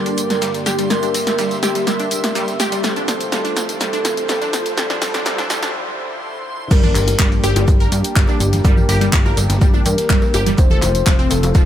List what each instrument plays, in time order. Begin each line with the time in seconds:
Already playing: analog synth pad G2 D3 A#3 G4 D5, soft synth lead A#4, synth texture C6, riser
0.06 synth pluck D4, closed hi-hat, tambourine
0.18 open hi-hat, tambourine, shaker
0.30 snare, closed hi-hat, tambourine
0.42 synth pluck G3, snare, closed hi-hat, tambourine, shaker
0.54 snare, closed hi-hat, tambourine
0.66 synth pluck G4, soft synth lead G4, snare, open hi-hat, tambourine, shaker
0.79 synth pluck G3, snare, closed hi-hat, tambourine
0.90 synth pluck G3, soft synth lead A#4, analog synth pad E5, snare, closed hi-hat, tambourine, shaker
1.03 synth pluck D4, closed hi-hat, tambourine
1.14 open hi-hat, tambourine
1.27 snare, closed hi-hat, tambourine
1.39 synth pluck G3, snare, closed hi-hat, tambourine, shaker
1.51 snare, closed hi-hat, tambourine
1.63 synth pluck G4, soft synth lead G4, snare, open hi-hat, tambourine, shaker
1.75 synth pluck G3, snare, closed hi-hat, tambourine
1.87 synth pluck G3, soft synth lead A#4, snare, closed hi-hat, tambourine, shaker
2.00 synth pluck D4, closed hi-hat, tambourine
2.11 open hi-hat, tambourine, shaker
2.24 snare, closed hi-hat, tambourine
2.35 synth pluck G3, snare, closed hi-hat, tambourine, shaker
2.48 snare, closed hi-hat, tambourine
2.60 synth pluck G4, soft synth lead G4, snare, open hi-hat, tambourine, shaker
2.72 synth pluck G3, snare, closed hi-hat, tambourine
2.84 analog synth pad F2 C3 A3 F4 C5, synth pluck G3, soft synth lead A4, snare, closed hi-hat, tambourine, shaker
2.96 synth pluck D4, closed hi-hat, tambourine
3.08 snare, open hi-hat, tambourine, shaker
3.21 closed hi-hat, tambourine
3.32 synth pluck G3, soft synth lead A4, snare, closed hi-hat, tambourine, shaker
3.45 synth pluck D4, closed hi-hat, tambourine
3.56 snare, open hi-hat, tambourine, shaker
3.69 closed hi-hat, tambourine
3.81 synth pluck G3, soft synth lead A4, snare, closed hi-hat, tambourine, shaker
3.93 synth pluck D4, closed hi-hat, tambourine
4.05 snare, open hi-hat, tambourine, shaker
4.17 closed hi-hat, tambourine
4.29 synth pluck G3, soft synth lead A4, snare, closed hi-hat, tambourine, shaker
4.42 synth pluck D4, snare, closed hi-hat, tambourine
4.53 snare, open hi-hat, tambourine, shaker
4.66 snare, closed hi-hat, tambourine
4.77 analog synth pad D2 D3 F3 E4, synth pluck G3, soft synth lead A4, snare, closed hi-hat, tambourine, shaker
4.90 synth pluck D4, snare, closed hi-hat, tambourine
5.02 synth pluck G3, soft synth lead A4, snare, open hi-hat, tambourine
5.14 synth pluck D4, snare, closed hi-hat, tambourine
5.26 synth pluck G3, soft synth lead A4, snare, closed hi-hat, tambourine, shaker
5.38 synth pluck D4, snare, closed hi-hat, tambourine
5.50 synth pluck G3, soft synth lead A4, snare, open hi-hat, tambourine, shaker
5.63 synth pluck D4, snare, closed hi-hat, tambourine
6.71 analog synth bass G1, synth pluck G3, analog synth pad A#3 D4 G4, soft synth lead A#4, kick, closed hi-hat, crash, tambourine, cowbell, shaker
6.83 synth pluck D4, tambourine, high bongo, high conga
6.95 analog synth bass G1, clap, open hi-hat, tambourine, shaker
7.07 closed hi-hat, tambourine, high bongo
7.19 analog synth bass G1, synth pluck G3, kick, snare, clap, closed hi-hat, tambourine, shaker
7.32 closed hi-hat, tambourine, high bongo
7.44 analog synth bass G1, synth pluck G4, soft synth lead G4, snare, open hi-hat, tambourine, cowbell, shaker
7.56 analog synth bass G1, synth pluck G3, closed hi-hat, tambourine, high bongo
7.68 kick, closed hi-hat, tambourine, shaker
7.80 synth pluck A#4, closed hi-hat, tambourine
7.92 analog synth bass G2, soft synth lead G4, open hi-hat, tambourine, high bongo, shaker
8.04 closed hi-hat, tambourine
8.16 analog synth bass G1, synth pluck G3, kick, snare, clap, closed hi-hat, tambourine, high bongo, shaker
8.28 synth pluck D4, snare, tambourine, cowbell
8.39 analog synth bass G1, open hi-hat, tambourine, high bongo, shaker
8.53 snare, closed hi-hat, tambourine, high conga
8.64 analog synth bass G1, synth pluck G3, soft synth lead A#4, kick, closed hi-hat, tambourine, cowbell, high bongo, shaker
8.77 tambourine, high conga
8.89 analog synth bass G1, synth pluck G4, open hi-hat, tambourine
9.01 synth pluck G3, snare, closed hi-hat, tambourine, high bongo
9.13 analog synth bass G1, kick, snare, clap, closed hi-hat, tambourine, shaker
9.26 synth pluck A#4, snare, tambourine, high bongo
9.37 analog synth bass G1, open hi-hat, tambourine, cowbell, shaker
9.50 analog synth bass G1, snare, closed hi-hat, tambourine, high bongo
9.61 analog synth bass G1, synth pluck G3, kick, closed hi-hat, tambourine, shaker
9.74 synth pluck D4, tambourine, high bongo
9.85 analog synth bass G2, soft synth lead A#4, open hi-hat, tambourine, high conga, shaker
9.98 snare, closed hi-hat, tambourine
10.09 analog synth bass G1, synth pluck G3, kick, snare, clap, closed hi-hat, tambourine, high bongo, shaker
10.22 snare, tambourine, cowbell
10.34 analog synth bass G1, synth pluck G4, open hi-hat, tambourine, high bongo, shaker
10.46 synth pluck G3, snare, closed hi-hat, tambourine, high conga
10.57 analog synth bass F1, analog synth pad A3 C4 F4, soft synth lead C5, kick, closed hi-hat, tambourine, cowbell, high bongo, shaker
10.70 synth pluck A4, tambourine, high conga
10.82 analog synth bass F1, clap, open hi-hat, tambourine, high bongo, shaker
10.95 closed hi-hat, tambourine
11.06 analog synth bass F1, synth pluck F3, kick, snare, clap, closed hi-hat, tambourine, shaker
11.19 synth pluck C4, closed hi-hat, tambourine, high bongo
11.30 analog synth bass F1, soft synth lead A4, snare, open hi-hat, tambourine, cowbell, shaker
11.43 analog synth bass F1, closed hi-hat, tambourine, high bongo
11.55 synth pluck F3, kick, closed hi-hat, tambourine, shaker